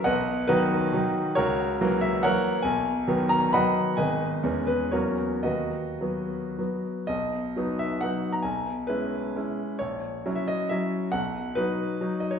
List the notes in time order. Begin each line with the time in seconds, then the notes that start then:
0.04 B1 B4 D#5 F#5
0.48 D#3 F#3 D#4 F#4 B4
0.93 D#3 F#3 D#4
1.35 C#2 F#4 A#4 C#5
1.81 E3 F#3 A#3
2.01 E5
2.23 E3 F#3 A#3 A#4 C#5 F#5
2.62 B1 G#5
3.08 D#3 F#3 B3
3.29 A#5
3.53 D#3 F#3 B3 D#5 F#5 B5
3.97 G#1 D#3 G#3 B3 B4 D#5 G#5
4.43 E2 E3 G#3 C#4
4.67 B4
4.92 E2 F#3 A#3 C#4 F#4 A#4 C#5
5.43 D#2 F#4 B4 D#5
6.01 F#3 B3
6.59 F#3 B3
7.07 B1 D#5
7.56 F#3 B3 D#4
7.79 E5
8.01 F#3 B3 D#4 F#5
8.33 A#5
8.42 B1 G#5
8.87 G#3 C#4 E4 B4
9.36 G#3 C#4 E4
9.79 A#1 C#5
10.26 F#3 C#4 E4
10.35 E5
10.48 D#5
10.69 F#3 C#4 E4 E5
11.12 B1 F#5
11.55 F#3 D#4 B4
12.01 F#3 D#4
12.20 D#5
12.31 C#5